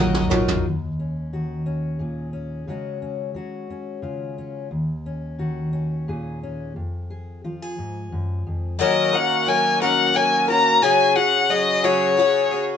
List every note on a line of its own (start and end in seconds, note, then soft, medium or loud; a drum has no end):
0.00 0.27 A#1 medium
0.00 0.60 D#2 medium
0.00 0.27 D#3 medium
0.00 0.60 D#3 medium
0.00 0.31 F#3 medium
0.00 0.59 F#3 medium
0.00 0.65 F#3 medium
0.00 0.31 D#4 medium
0.00 0.65 F4 medium
0.00 0.60 A#4 medium
0.00 0.29 A#4 medium
0.00 0.27 D#5 medium
0.00 0.61 D#5 medium
0.00 0.60 F5 medium
0.00 0.28 F#5 medium
0.14 mid tom medium
0.29 0.62 A#1 medium
0.29 0.65 F4 soft
0.29 0.65 F#4 medium
0.29 0.64 A#4 medium
0.29 0.61 C#5 medium
0.29 mid tom medium
0.33 0.66 D#4 soft
0.48 floor tom medium
0.65 2.68 D#2 medium
0.99 1.66 C#4 soft
1.33 2.68 D#3 soft
1.33 2.00 F#4 soft
1.66 2.33 C#4 soft
1.99 2.67 A#2 soft
1.99 2.64 G#4 soft
2.33 2.69 C#4 soft
2.67 3.36 C#3 medium
2.67 3.34 F#3 soft
2.67 4.72 G#3 soft
2.67 3.02 C#4 soft
2.67 3.36 F#4 medium
3.02 3.70 C#4 soft
3.35 4.67 F#3 soft
3.35 4.03 F#4 soft
3.70 4.37 C#4 soft
4.02 4.67 C#3 medium
4.02 4.71 F4 soft
4.38 4.68 C#4 soft
4.71 6.75 D#2 medium
5.06 5.72 C#4 soft
5.39 6.75 D#3 soft
5.39 6.07 F#4 soft
5.73 6.41 C#4 soft
6.08 6.76 A#2 medium
6.08 6.72 G#4 medium
6.43 6.72 C#4 soft
6.76 7.78 F2 medium
7.10 7.44 G#4 soft
7.44 8.75 F3 soft
7.44 7.62 F4 soft
7.62 8.80 G#4 soft
7.78 8.12 G#2 soft
8.12 8.46 F#2 soft
8.47 8.80 F2 medium
8.79 9.13 D#3 medium
8.79 10.80 D#3 medium
8.79 9.13 F#3 medium
8.79 10.80 A#3 medium
8.79 10.80 C#4 medium
8.79 9.13 C#4 medium
8.79 12.77 F#4 medium
8.79 9.14 F#4 loud
8.79 9.12 A#4 loud
8.79 9.16 D#5 medium
9.13 9.47 C#4 soft
9.13 9.47 F#4 medium
9.13 9.47 A#4 medium
9.13 9.50 F#5 medium
9.46 9.80 F#3 medium
9.46 9.81 C#4 medium
9.46 9.81 F#4 medium
9.46 9.80 A#4 medium
9.46 9.81 G#5 medium
9.82 10.16 D#3 medium
9.82 10.13 F#3 medium
9.82 10.14 C#4 medium
9.82 10.15 F#4 medium
9.82 10.15 A#4 medium
9.82 10.18 F#5 medium
10.14 10.48 F#3 medium
10.14 10.48 C#4 medium
10.14 10.49 F#4 medium
10.14 10.47 A#4 medium
10.14 10.49 G#5 loud
10.48 10.82 C#4 soft
10.48 10.82 F#4 medium
10.48 10.82 A#4 medium
10.48 10.84 A#5 loud
10.82 11.16 C#3 medium
10.82 12.77 C#3 medium
10.82 11.16 F#3 medium
10.82 12.77 C#4 medium
10.82 11.16 C#4 medium
10.82 11.16 F#4 medium
10.82 12.77 G#4 medium
10.82 11.14 G#4 medium
10.82 11.17 G#5 medium
11.15 11.49 C#4 soft
11.15 11.50 F#4 medium
11.15 11.49 G#4 medium
11.15 11.52 F#5 loud
11.49 11.83 F#3 medium
11.49 11.83 C#4 medium
11.49 11.83 F#4 medium
11.49 11.83 G#4 medium
11.49 11.86 D#5 medium
11.84 12.18 C#3 medium
11.84 12.16 F#3 medium
11.84 12.18 C#4 medium
11.84 12.17 F#4 medium
11.84 12.17 G#4 medium
11.84 12.60 C#5 loud
12.17 12.51 F#3 medium
12.17 12.52 C#4 medium
12.17 12.51 F#4 medium
12.17 12.50 G#4 medium
12.51 12.77 C#4 soft
12.51 12.77 F#4 soft
12.51 12.77 G#4 medium